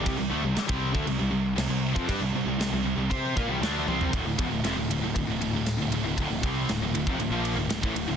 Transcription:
<<
  \new Staff \with { instrumentName = "Distorted electric guitar" } { \clef bass \time 4/4 \key d \minor \tempo 4 = 118 <c g>16 <c g>16 <d a>16 <c g>16 r16 <c g c'>8 <d a>16 <c g>16 <c g>16 <c g>8 <c g>16 <c g>8 <f c'>16 | <g d'>16 <c g>16 <c g>16 <c g>16 <c g>16 <c g>16 <c g>16 <c g>16 <c' g' c''>8 <bes f'>16 <c g>16 <d a d'>8 <c g c'>8 | <d, a,>16 <d, a,>16 <e, b,>16 <d, a,>16 <f, c>16 <d, a,>16 <d, a,>16 <d, a,>16 <d, a,>16 <d, a,>16 <d, a,>16 <d, a,>8 <d, a,>16 <d, a,>16 <d, a,>16 | <d, a,>16 <d, a,>16 <c g c'>8 <d, a,>16 <d, a,>16 <d, a,>16 <f, c>16 <d, a,>16 <bes, f bes>8 <d, a,>16 <d, a,>16 <a, e>16 <d, a,>16 <d, a,>16 | }
  \new Staff \with { instrumentName = "Distorted electric guitar" } { \clef bass \time 4/4 \key d \minor <c g>16 <c g>16 <d a>16 <c g>16 r16 <c g c'>8 <d a>16 <c g>16 <c g>16 <c g>8 <c g>16 <c g>8 <f c'>16 | <g d'>16 <c g>16 <c g>16 <c g>16 <c g>16 <c g>16 <c g>16 <c g>16 <c' g' c''>8 <bes f'>16 <c g>16 <d a d'>8 <c g c'>8 | <d, a,>16 <d, a,>16 <e, b,>16 <d, a,>16 <f, c>16 <d, a,>16 <d, a,>16 <d, a,>16 <d, a,>16 <d, a,>16 <d, a,>16 <d, a,>8 <d, a,>16 <d, a,>16 <d, a,>16 | <d, a,>16 <d, a,>16 <c g c'>8 <d, a,>16 <d, a,>16 <d, a,>16 <f, c>16 <d, a,>16 <bes, f bes>8 <d, a,>16 <d, a,>16 <a, e>16 <d, a,>16 <d, a,>16 | }
  \new Staff \with { instrumentName = "Overdriven electric guitar" } { \clef bass \time 4/4 \key d \minor <c g>16 <c g>16 <d a>16 <c g>16 r16 <c g c'>8 <d a>16 <c g>16 <c g>16 <c g>8 <c g>16 <c g>8 <f c'>16 | <g d'>16 <c g>16 <c g>16 <c g>16 <c g>16 <c g>16 <c g>16 <c g>16 <c' g' c''>8 <bes f'>16 <c g>16 <d a d'>8 <c g c'>8 | <d, a,>16 <d, a,>16 <e, b,>16 <d, a,>16 <f, c>16 <d, a,>16 <d, a,>16 <d, a,>16 <d, a,>16 <d, a,>16 <d, a,>16 <d, a,>8 <d, a,>16 <d, a,>16 <d, a,>16 | <d, a,>16 <d, a,>16 <c g c'>8 <d, a,>16 <d, a,>16 <d, a,>16 <f, c>16 <d, a,>16 <bes, f bes>8 <d, a,>16 <d, a,>16 <a, e>16 <d, a,>16 <d, a,>16 | }
  \new Staff \with { instrumentName = "Picked electric bass" } { \clef bass \time 4/4 \key d \minor c,16 c,16 d,16 c,16 r16 c,8 d,16 c,16 c,16 c,8 c,16 c,8 f,16 | g,16 c,16 c,16 c,16 c,16 c,16 c,16 c,16 c8 bes,16 c,16 d,8 c,8 | d,,16 d,,16 e,,16 d,,16 f,,16 d,,16 d,,16 d,,16 d,,16 d,,16 d,,16 d,,8 d,,16 d,,16 d,,16 | d,,16 d,,16 c,8 d,,16 d,,16 d,,16 f,,16 d,,16 bes,,8 d,,16 d,,16 a,,16 d,,16 d,,16 | }
  \new DrumStaff \with { instrumentName = "Drums" } \drummode { \time 4/4 <cymc bd>4 <cymc sn>16 bd8 bd16 cymc4 <cymc sn>8. bd16 | <cymc bd>4 <cymc sn>4 <cymc bd>8 bd8 <cymc sn>8 tommh16 tomfh16 | <bd cymr>8 <bd cymr>8 <cymr sn>8 cymr8 <bd cymr>8 cymr8 <cymr sn>8 cymr8 | <bd cymr>8 <bd cymr>8 <cymr sn>8 cymr16 bd16 cymr8 cymr8 <cymr sn>16 bd16 cymr8 | }
>>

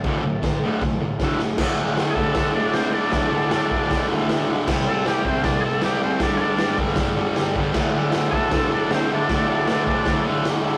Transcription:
<<
  \new Staff \with { instrumentName = "Transistor combo organ" } { \time 4/4 \key c \lydian \tempo 4 = 156 r1 | r4. <gis' a'>4 d'8 c'8 d'8~ | d'2~ d'8 r4. | r8 a'8 g'8 c'8 d'8 <gis' a'>8 g'8 c'8 |
d'8 <cis' d'>4 r2 r8 | r4. <gis' a'>4 d'8 c'8 d'8~ | d'2~ d'8 r4. | }
  \new Staff \with { instrumentName = "Distorted electric guitar" } { \clef bass \time 4/4 \key c \lydian <d, a, d>8 <d, a,>8 <d, a,>8 <d, a, d>8 <d, a,>8 <d, a,>8 <d, a, d>8 <d, a,>8 | <d, a, d>8 <a, d>8 <d, a, d>8 <a, d>8 <d, a, d>8 <d, a, d>8 <d, a, d>8 <a, d>8 | <d, a, d>8 <a, d>8 <d, a, d>8 <a, d>8 <d, a, d>8 <d, a, d>8 <d, a, d>8 <a, d>8 | <c g c'>8 <g c'>8 <c g c'>8 <g c'>8 <c g c'>8 <c g c'>8 <c g c'>8 <g c'>8 |
<g, d g>8 <d g>8 <g, d g>8 <d g>8 <g, d g>8 <g, d g>8 <g, d g>8 <d g>8 | <d, a, d>8 <a, d>8 <d, a, d>8 <a, d>8 <d, a, d>8 <d, a, d>8 <d, a, d>8 <a, d>8 | <d, a, d>8 <a, d>8 <d, a, d>8 <a, d>8 <d, a, d>8 <d, a, d>8 <d, a, d>8 <a, d>8 | }
  \new DrumStaff \with { instrumentName = "Drums" } \drummode { \time 4/4 <cymc bd>4 <cymc bd sn>4 <bd sn>4 <bd sn>8 sn8 | <cymc bd sn>4 <hho sn>8 bd8 <hho bd sn>4 <hho sn>4 | <hho bd sn>4 <hho sn>8 bd8 <hho bd sn>4 <hho sn>4 | <cymc bd sn>4 <hho sn>8 bd8 <hho bd sn>4 <hho sn>4 |
<hho bd sn>4 <hho sn>8 bd8 <hho bd sn>4 <hho sn>8 bd8 | <cymc bd sn>4 <hho sn>8 bd8 <hho bd sn>4 <hho sn>4 | <hho bd sn>4 <hho sn>8 bd8 <hho bd sn>4 <hho sn>4 | }
>>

